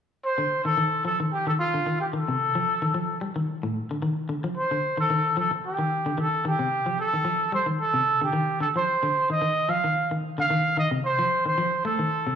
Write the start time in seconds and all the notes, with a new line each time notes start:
0.25 C5
0.38 D3
0.65 D#3 A4
0.78 D#3
1.05 F3 A4
1.20 D#3
1.32 G4
1.47 D#3 A4
1.59 F4
1.74 D3
1.86 D#3
2.00 G4
2.13 D#3 A4
2.28 C3
2.55 F3
2.82 D#3
2.94 F3
3.21 G3
3.36 D#3
3.63 A2
3.91 D3
4.02 D#3
4.29 D3
4.44 F3
4.57 C5
4.71 D3
4.97 D#3 A4
5.10 D#3
5.37 F3 A4
5.51 muted clean electric guitar stroke
5.66 G4
5.79 D#3
6.06 D3
6.18 D#3 A4
6.45 D#3 G4
6.59 C3
6.86 F3
7.00 A4
7.14 D#3
7.25 F3
7.52 G3 C5
7.66 D#3
7.80 A4
7.94 C3
8.21 D3 G4
8.33 D#3
8.60 D3 A4
8.76 F3 C5
9.03 D3
9.30 D#3 D#5
9.42 D#3
9.69 F3 F5
9.84 D#3
10.11 D#3
10.38 D3 F5
10.50 D#3
10.77 D#3 D#5
10.91 C3
11.05 C5
11.19 F3
11.46 D#3 C5
11.58 F3
11.85 A3 A4
11.99 D#3
12.27 C3